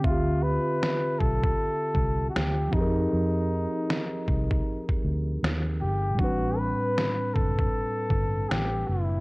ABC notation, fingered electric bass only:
X:1
M:4/4
L:1/16
Q:"Swing 16ths" 1/4=78
K:Ddor
V:1 name="Fingered electric bass" clef=bass
D,,3 z3 B,,,2 z2 C,,2 D,,2 F,,2 | F,,3 z3 C,,2 z2 D,,2 _E,,2 G,,,2 | A,,,3 z3 ^F,,,2 z2 G,,,2 A,,,2 F,,,2 |]